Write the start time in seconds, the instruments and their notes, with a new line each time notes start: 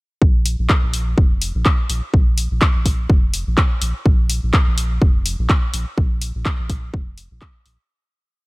0.22 analog synth bass A#1, kick
0.46 open hi-hat
0.59 analog synth bass A#1
0.69 kick, clap
0.83 analog synth bass A#1
0.94 open hi-hat
1.18 analog synth bass F1, kick
1.42 open hi-hat
1.55 analog synth bass A#1
1.65 kick, clap
1.90 analog synth bass A#1, open hi-hat
2.14 analog synth bass A#1, kick
2.38 open hi-hat
2.51 analog synth bass A#1
2.62 kick, clap
2.75 analog synth bass A#1
2.86 kick, open hi-hat
3.10 analog synth bass F1, kick
3.34 open hi-hat
3.47 analog synth bass A#1
3.58 kick, clap
3.82 analog synth bass A#1, open hi-hat
4.06 analog synth bass A#1, kick
4.30 open hi-hat
4.43 analog synth bass A#1
4.54 kick, clap
4.67 analog synth bass A#1
4.78 open hi-hat
5.02 analog synth bass F1, kick
5.26 open hi-hat
5.39 analog synth bass A#1
5.50 kick, clap
5.73 analog synth bass A#1, open hi-hat
5.98 analog synth bass A#1, kick
6.22 open hi-hat
6.35 analog synth bass A#1
6.46 kick, clap
6.59 analog synth bass A#1
6.70 kick, open hi-hat
6.94 analog synth bass F1, kick
7.18 open hi-hat
7.31 analog synth bass A#1
7.41 kick, clap
7.66 analog synth bass A#1, open hi-hat